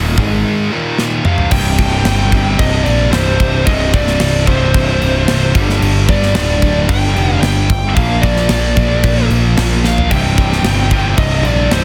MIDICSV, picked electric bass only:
0, 0, Header, 1, 2, 480
1, 0, Start_track
1, 0, Key_signature, -3, "minor"
1, 0, Tempo, 536673
1, 1359, Time_signature, 4, 2, 24, 8
1, 10591, End_track
2, 0, Start_track
2, 0, Title_t, "Picked electric bass"
2, 0, Program_c, 0, 34
2, 0, Note_on_c, 0, 27, 89
2, 139, Note_off_c, 0, 27, 0
2, 156, Note_on_c, 0, 32, 104
2, 380, Note_off_c, 0, 32, 0
2, 1356, Note_on_c, 0, 24, 97
2, 1580, Note_off_c, 0, 24, 0
2, 1593, Note_on_c, 0, 24, 93
2, 1819, Note_off_c, 0, 24, 0
2, 1831, Note_on_c, 0, 31, 100
2, 2281, Note_off_c, 0, 31, 0
2, 2319, Note_on_c, 0, 24, 100
2, 2542, Note_off_c, 0, 24, 0
2, 2561, Note_on_c, 0, 34, 96
2, 2784, Note_off_c, 0, 34, 0
2, 2801, Note_on_c, 0, 24, 92
2, 3024, Note_off_c, 0, 24, 0
2, 3040, Note_on_c, 0, 24, 113
2, 3263, Note_off_c, 0, 24, 0
2, 3282, Note_on_c, 0, 24, 104
2, 3727, Note_off_c, 0, 24, 0
2, 3764, Note_on_c, 0, 24, 101
2, 3986, Note_off_c, 0, 24, 0
2, 4003, Note_on_c, 0, 24, 101
2, 4225, Note_off_c, 0, 24, 0
2, 4241, Note_on_c, 0, 24, 94
2, 4464, Note_off_c, 0, 24, 0
2, 4485, Note_on_c, 0, 24, 93
2, 4706, Note_off_c, 0, 24, 0
2, 4721, Note_on_c, 0, 24, 84
2, 4944, Note_off_c, 0, 24, 0
2, 4964, Note_on_c, 0, 31, 113
2, 5185, Note_off_c, 0, 31, 0
2, 5200, Note_on_c, 0, 31, 103
2, 5423, Note_off_c, 0, 31, 0
2, 5446, Note_on_c, 0, 31, 96
2, 5666, Note_off_c, 0, 31, 0
2, 5681, Note_on_c, 0, 26, 104
2, 6126, Note_off_c, 0, 26, 0
2, 6163, Note_on_c, 0, 31, 91
2, 6385, Note_off_c, 0, 31, 0
2, 6401, Note_on_c, 0, 29, 94
2, 6623, Note_off_c, 0, 29, 0
2, 6636, Note_on_c, 0, 31, 89
2, 6860, Note_off_c, 0, 31, 0
2, 6883, Note_on_c, 0, 31, 110
2, 7126, Note_off_c, 0, 31, 0
2, 7126, Note_on_c, 0, 34, 106
2, 7567, Note_off_c, 0, 34, 0
2, 7595, Note_on_c, 0, 34, 95
2, 7819, Note_off_c, 0, 34, 0
2, 7843, Note_on_c, 0, 34, 97
2, 8063, Note_off_c, 0, 34, 0
2, 8083, Note_on_c, 0, 34, 96
2, 8303, Note_off_c, 0, 34, 0
2, 8322, Note_on_c, 0, 34, 87
2, 8542, Note_off_c, 0, 34, 0
2, 8563, Note_on_c, 0, 34, 95
2, 9004, Note_off_c, 0, 34, 0
2, 9045, Note_on_c, 0, 24, 100
2, 9263, Note_off_c, 0, 24, 0
2, 9283, Note_on_c, 0, 24, 93
2, 9501, Note_off_c, 0, 24, 0
2, 9510, Note_on_c, 0, 31, 99
2, 9956, Note_off_c, 0, 31, 0
2, 9997, Note_on_c, 0, 24, 94
2, 10217, Note_off_c, 0, 24, 0
2, 10233, Note_on_c, 0, 34, 96
2, 10454, Note_off_c, 0, 34, 0
2, 10472, Note_on_c, 0, 24, 97
2, 10591, Note_off_c, 0, 24, 0
2, 10591, End_track
0, 0, End_of_file